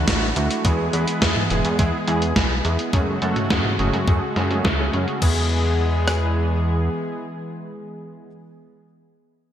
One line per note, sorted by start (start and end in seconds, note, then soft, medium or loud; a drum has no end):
0.00 2.89 E3 medium
0.00 0.62 A3 medium
0.00 0.63 D4 medium
0.00 0.63 F#4 medium
0.08 0.33 A1 medium
0.08 0.23 A3 medium
0.08 0.23 D4 medium
0.08 0.23 E4 medium
0.08 0.23 F#4 medium
0.08 kick loud
0.08 snare loud
0.08 closed hi-hat loud
0.36 0.49 D2 loud
0.36 0.60 A3 medium
0.36 0.60 D4 medium
0.36 0.60 E4 medium
0.36 0.60 F#4 medium
0.36 closed hi-hat medium
0.51 closed hi-hat medium
0.64 0.90 E2 loud
0.64 2.91 G#3 medium
0.64 0.89 G#3 medium
0.64 2.91 B3 medium
0.64 0.89 B3 medium
0.64 0.89 E4 medium
0.64 2.91 G#4 medium
0.64 0.89 G#4 medium
0.64 kick loud
0.64 closed hi-hat medium
0.93 1.06 E2 medium
0.93 1.18 G#3 medium
0.93 1.19 B3 medium
0.93 1.19 E4 medium
0.93 1.19 B4 medium
0.93 closed hi-hat medium
1.08 closed hi-hat medium
1.22 1.34 E2 medium
1.22 1.46 G#3 medium
1.22 1.46 B3 medium
1.22 1.46 E4 medium
1.22 1.46 G#4 medium
1.22 kick loud
1.22 snare loud
1.22 closed hi-hat medium
1.36 mid tom medium
1.50 1.63 E1 medium
1.50 1.65 G#3 medium
1.50 1.65 B3 medium
1.50 1.65 E4 medium
1.50 1.65 G#4 medium
1.50 closed hi-hat medium
1.65 1.77 E2 medium
1.65 closed hi-hat medium
1.79 1.92 E2 medium
1.79 1.94 G#3 medium
1.79 1.94 B3 medium
1.79 1.94 E4 medium
1.79 1.94 G#4 loud
1.79 kick loud
1.79 closed hi-hat medium
2.08 2.33 E2 loud
2.08 2.23 G#3 medium
2.08 2.23 B3 medium
2.08 2.23 E4 medium
2.08 2.23 G#4 medium
2.08 closed hi-hat medium
2.22 closed hi-hat medium
2.36 2.61 B1 medium
2.36 2.51 G#3 medium
2.36 2.51 B3 medium
2.36 2.51 E4 medium
2.36 2.51 G#4 medium
2.36 kick loud
2.36 snare loud
2.36 closed hi-hat medium
2.65 2.77 E2 medium
2.65 2.89 G#3 medium
2.65 2.89 B3 medium
2.65 2.89 E4 medium
2.65 2.89 G#4 medium
2.65 closed hi-hat medium
2.79 closed hi-hat medium
2.93 3.19 F#2 medium
2.93 5.20 C#3 medium
2.93 5.20 G#3 medium
2.93 5.20 A3 medium
2.93 3.17 A3 medium
2.93 3.17 C#4 medium
2.93 5.20 F#4 medium
2.93 3.17 F#4 medium
2.93 3.17 G#4 medium
2.93 kick loud
2.93 closed hi-hat medium
3.22 3.35 F#2 medium
3.22 3.47 A3 medium
3.22 3.47 C#4 medium
3.22 3.47 F#4 medium
3.22 3.47 A4 medium
3.22 closed hi-hat medium
3.36 closed hi-hat medium
3.36 mid tom medium
3.50 3.63 F#2 medium
3.50 3.74 A3 medium
3.50 3.74 C#4 medium
3.50 3.74 F#4 medium
3.50 3.74 G#4 medium
3.50 kick loud
3.50 snare loud
3.50 closed hi-hat medium
3.65 mid tom medium
3.79 3.92 F#1 medium
3.79 3.94 A3 medium
3.79 3.94 C#4 medium
3.79 3.94 F#4 medium
3.79 3.94 G#4 loud
3.79 closed hi-hat medium
3.93 4.06 F#2 medium
3.93 closed hi-hat medium
4.08 4.20 F#2 medium
4.08 4.23 A3 medium
4.08 4.23 C#4 medium
4.08 4.23 F#4 medium
4.08 4.23 G#4 medium
4.08 kick loud
4.08 closed hi-hat medium
4.36 4.61 F#2 medium
4.36 4.48 A3 medium
4.36 4.48 C#4 medium
4.36 4.48 F#4 medium
4.36 4.48 G#4 medium
4.36 snare medium
4.36 closed hi-hat medium
4.51 4.66 A3 medium
4.51 4.66 C#4 medium
4.51 4.66 F#4 medium
4.51 4.66 G#4 loud
4.51 closed hi-hat medium
4.65 4.90 C#2 medium
4.65 kick loud
4.65 snare loud
4.65 closed hi-hat medium
4.79 4.90 A3 medium
4.79 4.90 C#4 medium
4.79 4.90 F#4 medium
4.79 4.90 G#4 medium
4.93 5.06 F#2 medium
4.93 5.19 A3 medium
4.93 5.19 C#4 medium
4.93 5.19 F#4 medium
4.93 5.19 G#4 medium
4.93 closed hi-hat medium
5.08 closed hi-hat medium
5.22 6.89 E2 medium
5.22 8.27 E3 medium
5.22 8.26 G#3 medium
5.22 8.27 G#3 medium
5.22 8.26 B3 medium
5.22 8.27 B3 medium
5.22 8.26 E4 medium
5.22 8.27 G#4 medium
5.22 kick loud
5.22 crash medium
6.08 cross-stick medium